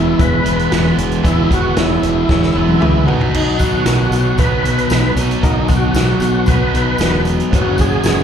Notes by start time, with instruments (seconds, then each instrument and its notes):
Already playing: fingered electric bass E1, overdriven electric guitar E2 B2 E3 G#3 B3 E4, string machine B3 E4 G#4 B4, tonewheel organ E4
0.19 fingered electric bass E1, grand piano E4 G#4 B4, tonewheel organ B4, kick, closed hi-hat
0.44 fingered electric bass E1, overdriven electric guitar E3 G#3 B3 E4, closed hi-hat
0.59 closed hi-hat
0.70 fingered electric bass E1, overdriven electric guitar E3 G#3 B3 E4, grand piano E4 G#4 B4, snare, closed hi-hat
0.98 fingered electric bass E1, closed hi-hat
1.11 closed hi-hat
1.23 fingered electric bass E1, overdriven electric guitar E2 B2 E3 G#3 B3, grand piano E4 G#4 B4, kick, closed hi-hat
1.27 overdriven electric guitar E4, tonewheel organ E4
1.44 tonewheel organ E4
1.51 fingered electric bass E1, tonewheel organ F#4, kick, closed hi-hat
1.76 fingered electric bass E1, grand piano E4 G#4 C#5, tonewheel organ E4, snare, closed hi-hat
2.02 fingered electric bass E1, overdriven electric guitar E2 B2 E3, closed hi-hat
2.29 fingered electric bass E1, grand piano E4 G#4 C#5, kick, snare
2.43 snare
2.55 fingered electric bass E1, overdriven electric guitar E3 G#3 B3 E4
2.69 high tom
2.80 fingered electric bass C#2, overdriven electric guitar E3 G#3 B3 E4, grand piano E4 G#4 B4, mid tom
3.06 fingered electric bass B1, overdriven electric guitar B2 F#3 B3 D#4, string machine B3 D#4 F#4 D#5, grand piano D#4 F#4 B4, floor tom
3.10 overdriven electric guitar B3
3.21 floor tom
3.34 fingered electric bass B1, tonewheel organ D#4, crash
3.59 tonewheel organ F#4, kick, closed hi-hat, tambourine
3.85 fingered electric bass B1, overdriven electric guitar B2 F#3 B3, grand piano D#4 F#4 B4, snare, closed hi-hat, tambourine
4.11 fingered electric bass B1, tonewheel organ F#4, closed hi-hat, tambourine
4.37 fingered electric bass B1, overdriven electric guitar B2 F#3 B3, grand piano D#4 F#4 B4, tonewheel organ B4, kick, closed hi-hat, tambourine
4.42 overdriven electric guitar D#4
4.64 fingered electric bass B1, overdriven electric guitar B2 F#3 B3 D#4, closed hi-hat
4.78 closed hi-hat
4.90 fingered electric bass B1, grand piano D#4 F#4 B4, snare, closed hi-hat, tambourine
5.16 fingered electric bass B1, overdriven electric guitar B2 F#3 B3, closed hi-hat, tambourine
5.20 overdriven electric guitar D#4
5.31 closed hi-hat
5.42 fingered electric bass B1, grand piano D#4 F#4 A#4, tonewheel organ D#4, kick, closed hi-hat
5.68 fingered electric bass B1, tonewheel organ F#4, kick, closed hi-hat, tambourine
5.94 fingered electric bass B1, overdriven electric guitar B2 F#3 B3, grand piano D#4 F#4 B4, snare, closed hi-hat, tambourine
6.20 fingered electric bass B1, tonewheel organ F#4, closed hi-hat, tambourine
6.46 fingered electric bass B1, overdriven electric guitar B2 F#3 B3 D#4, grand piano D#4 F#4 B4, tonewheel organ B4, kick, closed hi-hat, tambourine
6.73 fingered electric bass B1, overdriven electric guitar B2 F#3 B3 D#4, closed hi-hat
6.98 fingered electric bass E1, grand piano D#4 F#4 B4, snare, closed hi-hat, tambourine
7.25 closed hi-hat, tambourine
7.40 closed hi-hat
7.50 fingered electric bass F#1, overdriven electric guitar F#2 C#3 F#3 B3 C#4, string machine C4 D4 G4, grand piano C#4 F#4 B4, kick, closed hi-hat
7.55 overdriven electric guitar F#3, tonewheel organ F#4
7.71 string machine B3 C#4 F#4 B4
7.78 tonewheel organ G#4, kick, closed hi-hat, tambourine
8.04 fingered electric bass F#1, grand piano C#4 F#4 B4, snare, closed hi-hat, tambourine